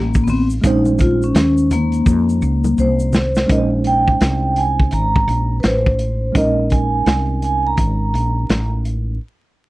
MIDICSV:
0, 0, Header, 1, 5, 480
1, 0, Start_track
1, 0, Key_signature, -5, "minor"
1, 0, Tempo, 714286
1, 429, Time_signature, 4, 2, 24, 8
1, 6514, End_track
2, 0, Start_track
2, 0, Title_t, "Vibraphone"
2, 0, Program_c, 0, 11
2, 0, Note_on_c, 0, 58, 90
2, 159, Note_on_c, 0, 59, 65
2, 164, Note_off_c, 0, 58, 0
2, 192, Note_off_c, 0, 59, 0
2, 200, Note_on_c, 0, 60, 94
2, 305, Note_off_c, 0, 60, 0
2, 441, Note_on_c, 0, 63, 91
2, 546, Note_off_c, 0, 63, 0
2, 679, Note_on_c, 0, 65, 91
2, 828, Note_off_c, 0, 65, 0
2, 831, Note_on_c, 0, 61, 90
2, 1132, Note_off_c, 0, 61, 0
2, 1160, Note_on_c, 0, 58, 80
2, 1881, Note_on_c, 0, 72, 80
2, 2087, Note_off_c, 0, 58, 0
2, 2362, Note_on_c, 0, 75, 84
2, 2369, Note_off_c, 0, 72, 0
2, 2467, Note_off_c, 0, 75, 0
2, 2600, Note_on_c, 0, 79, 88
2, 3079, Note_on_c, 0, 80, 83
2, 3089, Note_off_c, 0, 79, 0
2, 3316, Note_on_c, 0, 82, 95
2, 3321, Note_off_c, 0, 80, 0
2, 3730, Note_off_c, 0, 82, 0
2, 3763, Note_on_c, 0, 71, 64
2, 3794, Note_off_c, 0, 71, 0
2, 3797, Note_on_c, 0, 72, 80
2, 4246, Note_off_c, 0, 72, 0
2, 4280, Note_on_c, 0, 75, 86
2, 4515, Note_on_c, 0, 80, 75
2, 4521, Note_off_c, 0, 75, 0
2, 4995, Note_off_c, 0, 80, 0
2, 5003, Note_on_c, 0, 80, 81
2, 5150, Note_off_c, 0, 80, 0
2, 5152, Note_on_c, 0, 82, 77
2, 5838, Note_off_c, 0, 82, 0
2, 6514, End_track
3, 0, Start_track
3, 0, Title_t, "Tine electric piano"
3, 0, Program_c, 1, 4
3, 0, Note_on_c, 1, 56, 61
3, 0, Note_on_c, 1, 58, 49
3, 0, Note_on_c, 1, 63, 50
3, 0, Note_on_c, 1, 70, 61
3, 392, Note_off_c, 1, 56, 0
3, 398, Note_off_c, 1, 58, 0
3, 403, Note_off_c, 1, 63, 0
3, 410, Note_off_c, 1, 70, 0
3, 413, Note_on_c, 1, 56, 58
3, 426, Note_on_c, 1, 60, 43
3, 438, Note_on_c, 1, 63, 53
3, 449, Note_on_c, 1, 72, 71
3, 470, Note_on_c, 1, 61, 47
3, 482, Note_off_c, 1, 60, 0
3, 2314, Note_off_c, 1, 56, 0
3, 2327, Note_off_c, 1, 63, 0
3, 2329, Note_on_c, 1, 56, 56
3, 2331, Note_off_c, 1, 61, 0
3, 2332, Note_off_c, 1, 72, 0
3, 2339, Note_on_c, 1, 61, 49
3, 2351, Note_on_c, 1, 63, 45
3, 2363, Note_on_c, 1, 70, 47
3, 2407, Note_on_c, 1, 72, 56
3, 2410, Note_off_c, 1, 70, 0
3, 4232, Note_off_c, 1, 56, 0
3, 4237, Note_off_c, 1, 61, 0
3, 4243, Note_off_c, 1, 63, 0
3, 4250, Note_on_c, 1, 56, 48
3, 4262, Note_on_c, 1, 61, 48
3, 4271, Note_off_c, 1, 72, 0
3, 4274, Note_on_c, 1, 63, 53
3, 4285, Note_on_c, 1, 70, 59
3, 6152, Note_off_c, 1, 56, 0
3, 6158, Note_off_c, 1, 61, 0
3, 6164, Note_off_c, 1, 63, 0
3, 6170, Note_off_c, 1, 70, 0
3, 6514, End_track
4, 0, Start_track
4, 0, Title_t, "Fretless electric bass"
4, 0, Program_c, 2, 35
4, 0, Note_on_c, 2, 33, 84
4, 403, Note_off_c, 2, 33, 0
4, 427, Note_on_c, 2, 34, 99
4, 884, Note_off_c, 2, 34, 0
4, 904, Note_on_c, 2, 39, 82
4, 1362, Note_off_c, 2, 39, 0
4, 1384, Note_on_c, 2, 41, 93
4, 1614, Note_off_c, 2, 41, 0
4, 1626, Note_on_c, 2, 37, 90
4, 1855, Note_off_c, 2, 37, 0
4, 1868, Note_on_c, 2, 36, 84
4, 2324, Note_off_c, 2, 36, 0
4, 2349, Note_on_c, 2, 34, 87
4, 2805, Note_off_c, 2, 34, 0
4, 2829, Note_on_c, 2, 36, 88
4, 3285, Note_off_c, 2, 36, 0
4, 3309, Note_on_c, 2, 32, 97
4, 3537, Note_off_c, 2, 32, 0
4, 3545, Note_on_c, 2, 34, 90
4, 3775, Note_off_c, 2, 34, 0
4, 3790, Note_on_c, 2, 33, 83
4, 4245, Note_off_c, 2, 33, 0
4, 4266, Note_on_c, 2, 34, 91
4, 4724, Note_off_c, 2, 34, 0
4, 4745, Note_on_c, 2, 36, 80
4, 5203, Note_off_c, 2, 36, 0
4, 5226, Note_on_c, 2, 32, 90
4, 5455, Note_off_c, 2, 32, 0
4, 5469, Note_on_c, 2, 34, 86
4, 5697, Note_off_c, 2, 34, 0
4, 5708, Note_on_c, 2, 33, 84
4, 6164, Note_off_c, 2, 33, 0
4, 6514, End_track
5, 0, Start_track
5, 0, Title_t, "Drums"
5, 94, Note_on_c, 9, 82, 51
5, 101, Note_on_c, 9, 36, 99
5, 161, Note_off_c, 9, 82, 0
5, 168, Note_off_c, 9, 36, 0
5, 185, Note_on_c, 9, 46, 51
5, 185, Note_on_c, 9, 64, 61
5, 185, Note_on_c, 9, 82, 43
5, 252, Note_off_c, 9, 64, 0
5, 252, Note_off_c, 9, 82, 0
5, 253, Note_off_c, 9, 46, 0
5, 336, Note_on_c, 9, 82, 52
5, 403, Note_off_c, 9, 82, 0
5, 428, Note_on_c, 9, 36, 100
5, 428, Note_on_c, 9, 42, 88
5, 428, Note_on_c, 9, 82, 61
5, 495, Note_off_c, 9, 36, 0
5, 495, Note_off_c, 9, 82, 0
5, 496, Note_off_c, 9, 42, 0
5, 574, Note_on_c, 9, 63, 58
5, 574, Note_on_c, 9, 82, 41
5, 641, Note_off_c, 9, 63, 0
5, 641, Note_off_c, 9, 82, 0
5, 663, Note_on_c, 9, 63, 45
5, 663, Note_on_c, 9, 64, 58
5, 663, Note_on_c, 9, 82, 42
5, 665, Note_on_c, 9, 42, 74
5, 676, Note_on_c, 9, 36, 81
5, 730, Note_off_c, 9, 63, 0
5, 730, Note_off_c, 9, 64, 0
5, 730, Note_off_c, 9, 82, 0
5, 732, Note_off_c, 9, 42, 0
5, 743, Note_off_c, 9, 36, 0
5, 822, Note_on_c, 9, 82, 43
5, 889, Note_off_c, 9, 82, 0
5, 906, Note_on_c, 9, 42, 90
5, 912, Note_on_c, 9, 82, 72
5, 913, Note_on_c, 9, 38, 101
5, 973, Note_off_c, 9, 42, 0
5, 980, Note_off_c, 9, 38, 0
5, 980, Note_off_c, 9, 82, 0
5, 1057, Note_on_c, 9, 82, 45
5, 1124, Note_off_c, 9, 82, 0
5, 1148, Note_on_c, 9, 42, 79
5, 1149, Note_on_c, 9, 64, 66
5, 1149, Note_on_c, 9, 82, 49
5, 1215, Note_off_c, 9, 42, 0
5, 1216, Note_off_c, 9, 64, 0
5, 1216, Note_off_c, 9, 82, 0
5, 1290, Note_on_c, 9, 42, 42
5, 1297, Note_on_c, 9, 82, 38
5, 1357, Note_off_c, 9, 42, 0
5, 1364, Note_off_c, 9, 82, 0
5, 1385, Note_on_c, 9, 36, 82
5, 1387, Note_on_c, 9, 82, 70
5, 1452, Note_off_c, 9, 36, 0
5, 1454, Note_off_c, 9, 82, 0
5, 1541, Note_on_c, 9, 82, 44
5, 1608, Note_off_c, 9, 82, 0
5, 1626, Note_on_c, 9, 82, 35
5, 1693, Note_off_c, 9, 82, 0
5, 1777, Note_on_c, 9, 63, 72
5, 1777, Note_on_c, 9, 82, 51
5, 1844, Note_off_c, 9, 63, 0
5, 1844, Note_off_c, 9, 82, 0
5, 1867, Note_on_c, 9, 82, 60
5, 1935, Note_off_c, 9, 82, 0
5, 2012, Note_on_c, 9, 82, 50
5, 2080, Note_off_c, 9, 82, 0
5, 2102, Note_on_c, 9, 64, 61
5, 2102, Note_on_c, 9, 82, 44
5, 2114, Note_on_c, 9, 38, 87
5, 2169, Note_off_c, 9, 64, 0
5, 2169, Note_off_c, 9, 82, 0
5, 2181, Note_off_c, 9, 38, 0
5, 2253, Note_on_c, 9, 82, 48
5, 2262, Note_on_c, 9, 38, 72
5, 2320, Note_off_c, 9, 82, 0
5, 2329, Note_off_c, 9, 38, 0
5, 2348, Note_on_c, 9, 36, 102
5, 2348, Note_on_c, 9, 42, 81
5, 2415, Note_off_c, 9, 36, 0
5, 2416, Note_off_c, 9, 42, 0
5, 2582, Note_on_c, 9, 42, 72
5, 2649, Note_off_c, 9, 42, 0
5, 2739, Note_on_c, 9, 36, 72
5, 2807, Note_off_c, 9, 36, 0
5, 2827, Note_on_c, 9, 42, 91
5, 2834, Note_on_c, 9, 38, 102
5, 2894, Note_off_c, 9, 42, 0
5, 2901, Note_off_c, 9, 38, 0
5, 3065, Note_on_c, 9, 42, 73
5, 3133, Note_off_c, 9, 42, 0
5, 3223, Note_on_c, 9, 36, 83
5, 3290, Note_off_c, 9, 36, 0
5, 3300, Note_on_c, 9, 42, 71
5, 3367, Note_off_c, 9, 42, 0
5, 3465, Note_on_c, 9, 36, 88
5, 3532, Note_off_c, 9, 36, 0
5, 3553, Note_on_c, 9, 42, 74
5, 3620, Note_off_c, 9, 42, 0
5, 3783, Note_on_c, 9, 42, 69
5, 3789, Note_on_c, 9, 38, 101
5, 3850, Note_off_c, 9, 42, 0
5, 3856, Note_off_c, 9, 38, 0
5, 3940, Note_on_c, 9, 36, 101
5, 4007, Note_off_c, 9, 36, 0
5, 4024, Note_on_c, 9, 42, 69
5, 4091, Note_off_c, 9, 42, 0
5, 4267, Note_on_c, 9, 36, 102
5, 4267, Note_on_c, 9, 42, 84
5, 4334, Note_off_c, 9, 42, 0
5, 4335, Note_off_c, 9, 36, 0
5, 4503, Note_on_c, 9, 42, 65
5, 4516, Note_on_c, 9, 36, 70
5, 4570, Note_off_c, 9, 42, 0
5, 4583, Note_off_c, 9, 36, 0
5, 4746, Note_on_c, 9, 42, 75
5, 4752, Note_on_c, 9, 38, 101
5, 4813, Note_off_c, 9, 42, 0
5, 4820, Note_off_c, 9, 38, 0
5, 4988, Note_on_c, 9, 42, 69
5, 5055, Note_off_c, 9, 42, 0
5, 5223, Note_on_c, 9, 42, 70
5, 5226, Note_on_c, 9, 36, 75
5, 5290, Note_off_c, 9, 42, 0
5, 5293, Note_off_c, 9, 36, 0
5, 5477, Note_on_c, 9, 42, 73
5, 5544, Note_off_c, 9, 42, 0
5, 5708, Note_on_c, 9, 42, 81
5, 5714, Note_on_c, 9, 38, 96
5, 5775, Note_off_c, 9, 42, 0
5, 5781, Note_off_c, 9, 38, 0
5, 5948, Note_on_c, 9, 42, 58
5, 6015, Note_off_c, 9, 42, 0
5, 6514, End_track
0, 0, End_of_file